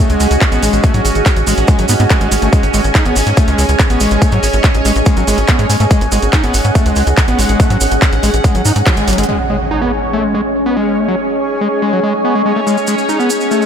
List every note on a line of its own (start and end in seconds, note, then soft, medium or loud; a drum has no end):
0.00 0.11 A3 loud
0.00 9.28 C#4 medium
0.00 2.55 F#4 medium
0.00 9.27 G#4 medium
0.00 9.29 D#5 medium
0.00 9.29 G#5 medium
0.10 0.16 C#2 medium
0.10 0.20 G#3 medium
0.10 closed hi-hat medium
0.10 cabasa soft
0.20 0.27 C#2 loud
0.20 0.27 G#3 medium
0.20 open hi-hat loud
0.20 cabasa medium
0.31 0.37 C#2 medium
0.31 closed hi-hat medium
0.31 cabasa soft
0.41 kick loud
0.41 clap loud
0.41 closed hi-hat medium
0.41 cabasa soft
0.52 0.59 A1 medium
0.52 0.62 B3 loud
0.52 closed hi-hat medium
0.52 cabasa soft
0.62 0.69 A1 loud
0.62 0.85 G#3 medium
0.62 open hi-hat loud
0.62 cabasa medium
0.73 0.80 A1 medium
0.73 closed hi-hat medium
0.73 cabasa soft
0.83 0.94 A3 medium
0.83 kick loud
0.83 closed hi-hat medium
0.83 cabasa medium
0.94 1.01 G#2 medium
0.94 1.01 F#3 medium
0.94 closed hi-hat medium
0.94 cabasa soft
1.05 1.11 G#1 loud
1.05 open hi-hat loud
1.05 cabasa loud
1.15 1.22 G#1 medium
1.15 closed hi-hat medium
1.15 cabasa soft
1.26 kick loud
1.26 clap loud
1.26 closed hi-hat medium
1.26 cabasa medium
1.36 1.43 A1 loud
1.36 closed hi-hat medium
1.36 cabasa soft
1.47 1.54 A1 loud
1.47 1.54 G#3 medium
1.47 open hi-hat loud
1.47 cabasa medium
1.57 1.64 A1 medium
1.57 closed hi-hat soft
1.57 cabasa soft
1.67 1.78 G#3 medium
1.67 kick loud
1.67 closed hi-hat medium
1.67 cabasa medium
1.79 1.85 G#1 medium
1.79 1.86 F#3 medium
1.79 closed hi-hat medium
1.79 cabasa soft
1.88 1.96 G#2 medium
1.88 1.93 B3 loud
1.88 open hi-hat loud
1.88 cabasa loud
1.99 2.06 G#2 medium
1.99 2.04 B3 medium
1.99 closed hi-hat medium
1.99 cabasa soft
2.10 2.17 G#3 medium
2.10 kick loud
2.10 clap loud
2.10 closed hi-hat medium
2.10 cabasa medium
2.21 2.28 G#1 medium
2.21 2.28 G#3 medium
2.21 closed hi-hat medium
2.21 cabasa soft
2.32 2.38 G#1 loud
2.32 2.36 G#3 medium
2.32 open hi-hat loud
2.32 cabasa medium
2.42 2.49 G#1 medium
2.42 2.49 A3 medium
2.42 closed hi-hat medium
2.42 cabasa soft
2.53 2.63 G#3 loud
2.53 5.93 C#5 medium
2.53 kick loud
2.53 closed hi-hat medium
2.53 cabasa medium
2.63 2.70 G#1 medium
2.63 closed hi-hat soft
2.63 cabasa soft
2.74 2.80 G#1 loud
2.74 2.81 G#3 medium
2.74 open hi-hat loud
2.74 cabasa medium
2.84 2.91 G#1 medium
2.84 closed hi-hat medium
2.84 cabasa soft
2.95 3.05 D#4 loud
2.95 kick loud
2.95 clap loud
2.95 closed hi-hat medium
2.95 cabasa medium
3.05 3.12 G#1 medium
3.05 3.16 B3 loud
3.05 closed hi-hat medium
3.05 cabasa soft
3.16 3.23 G#1 loud
3.16 open hi-hat loud
3.16 cabasa medium
3.27 3.33 G#2 medium
3.27 closed hi-hat soft
3.27 cabasa soft
3.37 3.49 A3 loud
3.37 kick loud
3.37 closed hi-hat medium
3.37 cabasa medium
3.48 3.54 C#2 medium
3.48 3.58 G#3 medium
3.48 closed hi-hat soft
3.48 cabasa soft
3.58 3.65 C#2 loud
3.58 3.65 G#3 medium
3.58 open hi-hat loud
3.58 cabasa medium
3.69 3.75 C#2 medium
3.69 closed hi-hat medium
3.69 cabasa soft
3.79 kick loud
3.79 clap loud
3.79 closed hi-hat medium
3.79 cabasa medium
3.90 3.97 A1 medium
3.90 4.00 B3 loud
3.90 closed hi-hat medium
3.90 cabasa soft
4.00 4.07 A1 loud
4.00 4.23 G#3 medium
4.00 open hi-hat loud
4.00 cabasa loud
4.11 4.18 A1 medium
4.11 closed hi-hat soft
4.11 cabasa soft
4.22 4.32 A3 medium
4.22 kick loud
4.22 closed hi-hat medium
4.22 cabasa medium
4.32 4.39 G#2 medium
4.32 4.39 F#3 medium
4.32 closed hi-hat medium
4.32 cabasa soft
4.43 4.49 G#1 loud
4.43 open hi-hat loud
4.43 cabasa medium
4.53 4.60 G#1 medium
4.53 closed hi-hat medium
4.53 cabasa soft
4.64 kick loud
4.64 clap loud
4.64 closed hi-hat medium
4.64 cabasa soft
4.74 4.81 A1 medium
4.74 closed hi-hat medium
4.74 cabasa soft
4.85 4.92 A1 loud
4.85 4.92 G#3 medium
4.85 open hi-hat loud
4.85 cabasa medium
4.96 5.02 A1 medium
4.96 closed hi-hat medium
4.96 cabasa soft
5.06 5.16 G#3 medium
5.06 kick loud
5.06 closed hi-hat medium
5.06 cabasa medium
5.17 5.23 G#1 medium
5.17 5.24 F#3 medium
5.17 closed hi-hat medium
5.17 cabasa soft
5.27 5.34 G#1 loud
5.27 5.37 G#3 loud
5.27 open hi-hat loud
5.27 cabasa medium
5.38 5.44 G#1 medium
5.38 closed hi-hat medium
5.38 cabasa soft
5.48 5.59 B3 medium
5.48 kick loud
5.48 clap loud
5.48 closed hi-hat medium
5.48 cabasa medium
5.59 5.66 G#2 medium
5.59 5.66 G#3 loud
5.59 closed hi-hat medium
5.59 cabasa soft
5.70 5.76 G#2 loud
5.70 5.77 G#3 medium
5.70 open hi-hat loud
5.70 cabasa medium
5.80 5.87 G#2 medium
5.80 5.84 A3 medium
5.80 closed hi-hat medium
5.80 cabasa soft
5.91 6.01 G#3 loud
5.91 9.31 F#5 medium
5.91 kick loud
5.91 closed hi-hat medium
5.91 cabasa medium
6.01 6.08 G#1 medium
6.01 closed hi-hat medium
6.01 cabasa soft
6.12 6.18 G#1 loud
6.12 6.19 G#3 medium
6.12 open hi-hat loud
6.12 cabasa medium
6.22 6.29 G#1 medium
6.22 closed hi-hat medium
6.22 cabasa soft
6.33 6.43 D#4 loud
6.33 kick loud
6.33 clap loud
6.33 closed hi-hat medium
6.33 cabasa soft
6.43 6.50 G#1 loud
6.43 6.54 B3 loud
6.43 closed hi-hat medium
6.43 cabasa soft
6.54 6.61 G#1 loud
6.54 open hi-hat loud
6.54 cabasa medium
6.64 6.71 G#2 medium
6.64 closed hi-hat medium
6.64 cabasa soft
6.75 6.87 A3 loud
6.75 kick loud
6.75 closed hi-hat medium
6.75 cabasa medium
6.86 6.92 C#2 medium
6.86 6.96 G#3 medium
6.86 closed hi-hat medium
6.86 cabasa soft
6.96 7.03 C#2 loud
6.96 7.03 G#3 medium
6.96 open hi-hat loud
6.96 cabasa medium
7.07 7.13 C#2 medium
7.07 closed hi-hat medium
7.07 cabasa soft
7.17 kick loud
7.17 clap loud
7.17 closed hi-hat medium
7.17 cabasa medium
7.28 7.35 A1 medium
7.28 7.38 B3 loud
7.28 closed hi-hat medium
7.28 cabasa soft
7.39 7.45 A1 loud
7.39 7.61 G#3 medium
7.39 open hi-hat loud
7.39 cabasa medium
7.49 7.56 A1 medium
7.49 closed hi-hat medium
7.49 cabasa soft
7.60 7.70 A3 medium
7.60 kick loud
7.60 closed hi-hat medium
7.60 cabasa medium
7.70 7.77 G#2 medium
7.70 7.77 F#3 medium
7.70 closed hi-hat medium
7.70 cabasa soft
7.81 7.87 G#1 loud
7.81 open hi-hat loud
7.81 cabasa loud
7.91 7.98 G#1 medium
7.91 closed hi-hat medium
7.91 cabasa soft
8.02 kick loud
8.02 clap loud
8.02 closed hi-hat medium
8.02 cabasa soft
8.12 8.19 A1 loud
8.12 closed hi-hat medium
8.12 cabasa soft
8.23 8.30 A1 loud
8.23 8.30 G#3 medium
8.23 open hi-hat loud
8.23 cabasa medium
8.34 8.40 A1 medium
8.34 closed hi-hat medium
8.34 cabasa soft
8.44 8.54 G#3 medium
8.44 kick loud
8.44 closed hi-hat medium
8.44 cabasa medium
8.55 8.61 G#1 medium
8.55 8.62 F#3 medium
8.55 closed hi-hat medium
8.55 cabasa soft
8.65 8.72 G#2 loud
8.65 8.72 D#4 medium
8.65 open hi-hat loud
8.65 cabasa medium
8.76 8.83 G#2 medium
8.76 closed hi-hat medium
8.76 cabasa soft
8.86 8.96 F#3 loud
8.86 kick loud
8.86 clap loud
8.86 closed hi-hat medium
8.86 cabasa soft
8.97 9.04 G#1 medium
8.97 9.09 G#3 medium
8.97 closed hi-hat medium
8.97 cabasa soft
9.08 9.14 G#1 loud
9.08 9.18 F#3 loud
9.08 closed hi-hat medium
9.08 open hi-hat loud
9.08 cabasa medium
9.13 closed hi-hat medium
9.18 9.25 G#1 medium
9.18 9.25 G#3 medium
9.18 closed hi-hat medium
9.18 cabasa soft
9.23 closed hi-hat medium
9.29 9.39 G#3 loud
9.29 13.66 C#4 medium
9.29 13.66 G#4 medium
9.29 13.66 C#5 medium
9.29 impact medium
9.33 13.66 D#5 medium
9.48 9.57 G#3 medium
9.48 13.66 G#5 medium
9.71 9.81 D#4 loud
9.82 9.92 B3 loud
10.13 10.25 A3 loud
10.24 10.34 G#3 medium
10.34 10.41 G#3 medium
10.66 10.76 B3 medium
10.77 10.99 G#3 medium
10.98 11.08 A3 medium
11.08 11.15 F#3 medium
11.61 11.68 G#3 medium
11.82 11.92 G#3 medium
11.93 12.00 F#3 medium
12.03 12.13 G#3 loud
12.24 12.35 B3 medium
12.35 12.42 G#3 loud
12.46 12.53 G#3 medium
12.56 12.60 A3 medium
12.67 12.77 G#3 loud
12.67 cabasa medium
12.77 cabasa soft
12.87 12.95 G#3 medium
12.87 cabasa medium
12.98 cabasa soft
13.09 13.19 D#4 loud
13.09 cabasa medium
13.20 13.30 B3 loud
13.20 cabasa soft
13.30 cabasa loud
13.40 cabasa soft
13.51 13.63 A3 loud
13.51 cabasa medium
13.62 13.66 G#3 medium
13.62 cabasa soft